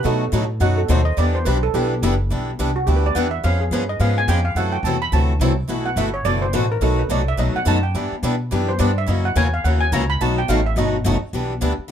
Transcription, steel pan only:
0.05 0.31 A4 medium
0.61 0.77 F#5 medium
0.78 0.89 A4 medium
0.90 1.06 C5 medium
1.05 1.17 D#5 medium
1.18 1.34 D5 medium
1.35 1.46 C5 medium
1.45 1.62 B4 medium
1.63 1.74 A4 medium
1.75 2.55 G4 medium
2.76 2.87 F#4 medium
2.87 2.96 G4 medium
2.96 3.06 B4 medium
3.06 3.15 D5 medium
3.16 3.32 F#5 medium
3.31 3.43 E5 medium
3.44 3.60 F5 medium
3.61 3.72 G#4 medium
3.73 3.89 B4 medium
3.89 4.00 D#5 medium
4.01 4.17 F5 medium
4.18 4.29 G#5 loud
4.29 4.45 G5 medium
4.45 4.56 F5 medium
4.57 4.73 F#5 medium
4.72 4.84 G5 medium
4.84 5.01 A5 medium
5.02 5.13 B5 loud
5.13 5.55 A5 medium
5.86 5.97 F#5 medium
5.97 6.14 E5 medium
6.14 6.25 C#5 medium
6.25 6.42 D5 loud
6.42 6.54 C5 medium
6.54 6.70 B4 medium
6.72 6.82 A#4 medium
6.82 6.98 A4 medium
6.99 7.10 B4 medium
7.11 7.27 D5 medium
7.28 7.39 E5 medium
7.39 7.55 D#5 medium
7.56 7.67 F#5 loud
7.68 7.84 A5 loud
7.83 8.20 G5 medium
8.69 8.80 C5 medium
8.80 8.96 D5 medium
8.98 9.08 E5 medium
9.09 9.25 D#5 medium
9.25 9.36 F#5 medium
9.37 9.53 G#5 loud
9.54 9.64 F5 medium
9.64 9.80 F#5 medium
9.81 9.92 G#5 loud
9.93 10.09 A#5 medium
10.10 10.20 B5 loud
10.21 10.37 A5 medium
10.38 10.49 G5 medium
10.49 10.65 F5 medium
10.66 10.77 E5 medium
10.78 11.24 D#5 medium

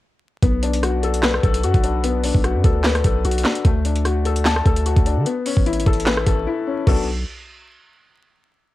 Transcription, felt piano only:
0.43 1.43 B3 medium
0.63 1.63 D4 medium
0.83 1.62 F#4 medium
1.03 1.42 A4 medium
1.23 2.24 B4 loud
1.43 2.44 A4 medium
1.64 2.42 F#4 medium
1.84 2.22 D4 medium
2.04 3.04 B3 loud
2.24 3.25 D4 medium
2.44 3.23 F#4 medium
2.64 3.03 A4 medium
2.84 3.65 B4 loud
3.04 3.65 A4 medium
3.25 3.65 F#4 loud
3.45 3.65 D4 medium
3.65 4.65 A3 loud
3.85 4.86 D4 medium
4.05 4.84 F#4 medium
4.25 4.64 A4 medium
4.45 5.26 A5 loud
4.66 5.26 A4 medium
4.86 5.26 F#4 medium
5.06 5.26 D4 medium
5.26 6.27 B3 medium
5.46 6.47 C#4 medium
5.66 6.45 E4 medium
5.86 6.25 A4 loud
6.06 6.87 B4 loud
6.26 6.85 A4 medium
6.47 6.87 E4 medium
6.67 6.87 C#4 medium
6.87 7.06 B3 medium
6.87 7.06 D4 medium
6.87 7.06 F#4 medium
6.87 7.06 A4 loud

